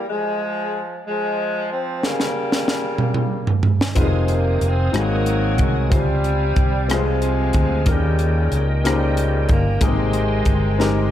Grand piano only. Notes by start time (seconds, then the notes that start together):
3.95 C4 D#4 F4 G#4 B4
4.04 C5
4.92 G#2 C4 D#4 F#4 G#4 C5
5.90 C3 C4 F4 C5 G#5
6.88 G#3 C4 F4 G#4 B4
6.97 C5
7.86 D#3 A#3 C#4 D#4 G4 A#4
8.84 A#3 C#4 D#4 G4 C5
9.81 C3 G#3 A#3 D#4 G4 G#4
9.87 C4
10.79 G#3 C4 D#4 G4 A#4